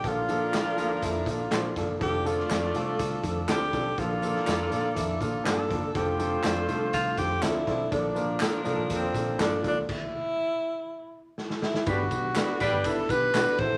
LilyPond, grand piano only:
\new Staff \with { instrumentName = "Grand piano" } { \time 4/4 \key bes \lydian \tempo 4 = 122 <f bes d' a'>8 <f bes d' a'>8 <f bes d' a'>8 <f bes d' a'>8 <f bes d' a'>8 <f bes d' a'>8 <f bes d' c''>8 <f bes d' a'>8 | <f c' d' a'>8 <f c' d' a'>8 <f c' d' a'>8 <f c' d' a'>8 <f c' d' a'>8 <f c' d' a'>8 <f c' d' a'>8 <f c' d' a'>8 | <f bes d' a'>8 <f bes d' a'>8 <f bes d' a'>8 <f bes d' a'>8 <f bes d' a'>8 <f bes d' a'>8 <f bes d' a'>8 <f bes d' a'>8 | <f c' d' a'>8 <f c' d' a'>8 <f c' d' a'>8 <f c' d' a'>8 <f c' d' a'>8 <f c' d' a'>8 <f c' d' a'>8 <f c' d' a'>8 |
<f bes d' a'>8 <f bes d' bes'>8 <f bes d' a'>8 <f bes d' a'>8 <f bes d' a'>8 <f bes d' a'>8 <f bes d' a'>8 <f bes d' a'>8 | r1 | \key g \major <b d' g'>8 <b d' g'>8 <b d' g'>8 <b d' g'>8 <b d' e'>8 <b d' g'>8 <b d' fis'>8 <c' e' a'>8 | }